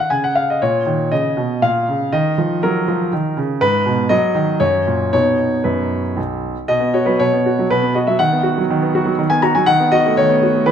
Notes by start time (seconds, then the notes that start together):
0.00 F#5
0.10 C#3 G#5
0.24 F#5
0.35 F5
0.50 D#5
0.62 A#2 C#5
0.86 D#3
1.12 C#3 D#5
1.37 B2
1.62 A#2 F5
1.89 C#3
2.12 D#3 D#5
2.38 F3
2.63 F#3 A#4
2.88 F3
3.13 D#3
3.37 C#3
3.61 G#2 B4
3.86 B2
4.09 F#3 D#5
4.35 D#3
4.60 F#2 C#5
4.87 A#2
5.13 B2 B3 D#4 C#5
5.64 F#2 B4
6.17 B1
6.68 B2 D#5
6.80 B3
6.94 F#4 C#5
7.06 F#3 B4
7.20 B2 C#5
7.33 B3
7.46 F#4
7.59 F#3
7.70 B2 B4
7.83 B3
7.95 F#4 D#5
8.07 F#3 E5
8.19 D#3 F#5
8.33 B3
8.43 F#4
8.58 F#3
8.70 D#3
8.82 B3
8.95 F#4
9.05 F#3
9.19 D#3
9.30 B3 G#5
9.42 F#4 A#5
9.55 F#3 G#5
9.66 D#3 F#5
9.80 B3
9.92 F#4 D#5
10.05 A3
10.17 D#3 C#5
10.29 B3
10.43 F#4
10.54 A3
10.66 E3 B4